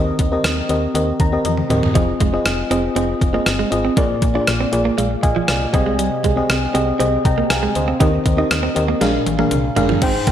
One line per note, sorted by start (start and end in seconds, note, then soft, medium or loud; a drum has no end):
0.00 0.12 D#2 loud
0.00 0.66 D#3 medium
0.00 0.27 C4 medium
0.00 0.28 G4 medium
0.00 0.28 A#4 medium
0.00 0.28 D#5 medium
0.19 0.37 D#2 medium
0.19 kick medium
0.19 closed hi-hat medium
0.32 0.65 C4 medium
0.32 0.66 G4 medium
0.32 0.66 A#4 medium
0.32 0.66 D#5 medium
0.44 0.62 D#2 medium
0.44 cross-stick loud
0.44 closed hi-hat medium
0.69 0.88 D#2 medium
0.69 0.92 C4 medium
0.69 0.92 G4 medium
0.69 0.92 A#4 medium
0.69 0.92 D#5 medium
0.69 closed hi-hat medium
0.94 1.13 D#2 loud
0.94 1.28 C4 medium
0.94 1.29 G4 medium
0.94 1.29 A#4 medium
0.94 1.29 D#5 medium
0.94 closed hi-hat medium
1.20 1.38 D#2 loud
1.20 1.44 A#5 medium
1.20 kick medium
1.20 closed hi-hat medium
1.32 1.66 C4 medium
1.32 1.66 G4 medium
1.32 1.66 A#4 medium
1.32 1.44 D#5 medium
1.45 1.63 F2 medium
1.45 1.70 D#5 medium
1.45 closed hi-hat medium
1.45 high tom soft
1.57 mid tom medium
1.70 1.88 D#2 medium
1.70 1.92 C4 medium
1.70 1.93 G4 medium
1.70 1.93 A#4 medium
1.70 1.93 D#5 medium
1.70 closed hi-hat medium
1.70 mid tom medium
1.83 floor tom medium
1.94 2.14 F1 loud
1.94 2.04 F3 medium
1.94 2.29 C4 medium
1.94 2.29 F4 medium
1.94 2.29 G#4 medium
1.94 2.29 D#5 medium
1.94 kick loud
1.94 closed hi-hat medium
2.20 2.39 F1 loud
2.20 2.30 G#3 medium
2.20 kick medium
2.20 closed hi-hat medium
2.33 2.67 C4 medium
2.33 2.67 F4 medium
2.33 2.67 G#4 medium
2.33 2.67 D#5 medium
2.33 muted clean electric guitar stroke soft
2.46 2.64 F1 medium
2.46 cross-stick loud
2.46 closed hi-hat medium
2.70 2.89 F1 loud
2.70 2.93 C4 medium
2.70 2.80 C4 medium
2.70 2.93 F4 medium
2.70 2.94 G#4 medium
2.70 2.94 D#5 medium
2.70 closed hi-hat medium
2.95 3.14 F1 loud
2.95 3.30 C4 medium
2.95 3.05 C4 medium
2.95 3.30 F4 medium
2.95 3.30 G#4 medium
2.95 3.30 D#5 medium
2.95 closed hi-hat medium
3.21 3.40 F1 medium
3.21 muted clean electric guitar stroke soft
3.21 kick medium
3.21 closed hi-hat medium
3.33 3.43 A#3 medium
3.33 3.67 C4 medium
3.33 3.68 F4 medium
3.33 3.68 G#4 medium
3.33 3.68 D#5 medium
3.46 3.65 G1 medium
3.46 cross-stick medium
3.46 closed hi-hat medium
3.59 3.68 G#3 medium
3.71 3.90 G#1 medium
3.71 3.94 C4 medium
3.71 3.94 F4 medium
3.71 3.94 G#4 medium
3.71 3.94 D#5 medium
3.71 muted clean electric guitar stroke soft
3.71 closed hi-hat medium
3.85 3.94 C4 medium
3.97 4.15 A#1 loud
3.97 4.69 A#2 medium
3.97 4.31 A#3 medium
3.97 4.06 A#3 medium
3.97 4.31 F4 medium
3.97 4.31 G#4 medium
3.97 4.31 D5 medium
3.97 kick loud
3.97 closed hi-hat medium
4.22 4.40 A#1 loud
4.22 muted clean electric guitar stroke soft
4.22 kick medium
4.22 closed hi-hat medium
4.34 4.68 A#3 medium
4.34 4.44 D4 medium
4.34 4.69 F4 medium
4.34 4.69 G#4 medium
4.34 4.69 D5 medium
4.47 4.66 A#1 medium
4.47 cross-stick loud
4.47 closed hi-hat medium
4.61 4.69 C4 medium
4.72 4.91 A#1 loud
4.72 4.95 A#3 medium
4.72 4.95 F4 medium
4.72 4.95 G#4 medium
4.72 4.95 D5 medium
4.72 muted clean electric guitar stroke soft
4.72 closed hi-hat medium
4.85 4.94 A#3 medium
4.98 5.17 A#1 medium
4.98 5.07 G#3 medium
4.98 5.22 D5 soft
4.98 5.22 F5 medium
4.98 closed hi-hat medium
5.23 5.42 A#1 medium
5.23 5.46 D#5 medium
5.23 5.47 F5 medium
5.23 5.47 G#5 medium
5.23 muted clean electric guitar stroke soft
5.23 kick medium
5.23 closed hi-hat medium
5.36 5.45 F3 medium
5.48 5.67 C2 medium
5.48 5.97 D5 medium
5.48 5.96 F5 medium
5.48 muted clean electric guitar stroke soft
5.48 cross-stick medium
5.48 closed hi-hat medium
5.73 6.10 C2 loud
5.73 6.45 C3 medium
5.73 5.83 G3 medium
5.73 6.30 C4 medium
5.73 6.30 G4 medium
5.73 6.30 G#4 medium
5.73 6.30 D#5 medium
5.73 5.97 G#5 medium
5.73 kick loud
5.73 closed hi-hat medium
5.86 5.95 G#3 medium
5.99 6.08 G3 medium
5.99 closed hi-hat medium
6.24 6.42 C2 medium
6.24 6.33 G#3 medium
6.24 kick medium
6.24 closed hi-hat medium
6.36 6.70 C4 medium
6.36 6.70 G4 medium
6.36 6.71 G#4 medium
6.36 6.71 D#5 medium
6.36 muted clean electric guitar stroke soft
6.50 6.68 C2 medium
6.50 cross-stick loud
6.50 closed hi-hat medium
6.74 6.93 C2 loud
6.74 6.97 C4 medium
6.74 6.83 C4 medium
6.74 6.97 G4 medium
6.74 6.97 G#4 medium
6.74 6.97 D#5 medium
6.74 closed hi-hat medium
6.99 7.18 C2 loud
6.99 7.33 C4 medium
6.99 7.09 C4 medium
6.99 7.33 G4 medium
6.99 7.33 G#4 medium
6.99 7.25 D#5 medium
6.99 closed hi-hat medium
7.25 7.43 C2 loud
7.25 7.49 G5 medium
7.25 7.49 A#5 medium
7.25 muted clean electric guitar stroke soft
7.25 kick medium
7.25 closed hi-hat medium
7.38 7.47 A#3 medium
7.50 7.69 C2 medium
7.50 7.74 F5 medium
7.50 7.74 G#5 medium
7.50 cross-stick loud
7.50 closed hi-hat medium
7.63 7.72 G#3 medium
7.75 7.94 D2 medium
7.75 8.24 C5 medium
7.75 8.00 D#5 medium
7.75 muted clean electric guitar stroke soft
7.75 closed hi-hat medium
7.88 7.97 C4 medium
8.00 8.19 D#2 loud
8.00 8.72 D#3 medium
8.00 8.34 C4 medium
8.00 8.09 D#4 medium
8.00 8.34 G4 medium
8.00 8.34 A#4 medium
8.00 8.35 D#5 medium
8.00 kick loud
8.00 closed hi-hat medium
8.26 8.44 D#2 medium
8.26 muted clean electric guitar stroke soft
8.26 kick medium
8.26 closed hi-hat medium
8.37 8.71 C4 medium
8.37 8.47 D#4 medium
8.37 8.72 G4 medium
8.37 8.72 A#4 medium
8.37 8.72 D#5 medium
8.51 8.69 D#2 loud
8.51 cross-stick loud
8.51 closed hi-hat medium
8.63 8.72 C4 medium
8.75 8.95 D#2 loud
8.75 8.98 C4 medium
8.75 8.98 G4 medium
8.75 8.99 A#4 medium
8.75 8.99 D#5 medium
8.75 muted clean electric guitar stroke soft
8.75 closed hi-hat medium
8.88 8.97 A#3 medium
9.01 9.20 A#1 medium
9.01 9.73 A#2 medium
9.01 9.10 G#3 medium
9.01 9.35 D4 medium
9.01 9.35 G#4 medium
9.01 9.35 A#4 medium
9.01 9.35 F5 medium
9.01 snare soft
9.01 closed hi-hat medium
9.26 9.45 A#1 medium
9.26 muted clean electric guitar stroke soft
9.26 closed hi-hat medium
9.26 high tom medium
9.38 9.48 A#3 medium
9.38 9.73 D4 medium
9.38 9.73 G#4 medium
9.38 9.73 A#4 medium
9.38 9.73 F5 medium
9.38 high tom medium
9.51 9.70 C2 medium
9.51 muted clean electric guitar stroke soft
9.51 closed hi-hat medium
9.51 mid tom medium
9.76 9.95 G1 loud
9.76 9.86 G#3 medium
9.76 9.99 D4 medium
9.76 9.99 G#4 medium
9.76 9.99 A#4 medium
9.76 10.00 F5 medium
9.76 closed hi-hat medium
9.76 floor tom medium
9.89 9.98 F3 medium
9.89 floor tom medium
10.02 10.20 G#1 loud
10.02 10.32 G#2 medium
10.02 10.11 C4 medium
10.02 10.32 D#4 medium
10.02 10.32 G#4 medium
10.02 10.32 C5 medium
10.02 10.32 G5 medium
10.02 kick loud
10.02 closed hi-hat medium
10.02 crash loud
10.27 10.32 G#1 loud
10.27 10.32 A#3 medium
10.27 kick medium
10.27 closed hi-hat medium